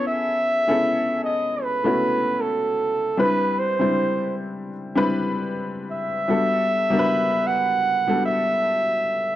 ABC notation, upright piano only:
X:1
M:4/4
L:1/16
Q:"Swing 16ths" 1/4=77
K:Amix
V:1 name="Upright piano"
[B,CE^GA]2 z [B,CEGA]4- [B,CEGA] z [A,B,CEF]6 z | [G,=CDEB]2 z [G,CDE=c]4- [G,CDEc] z [G,CDEB]6 z | [G,B,DFA]2 z [G,B,DF_B=B]4- [G,B,DF_B=B] z [G,B,DFA]6 z |]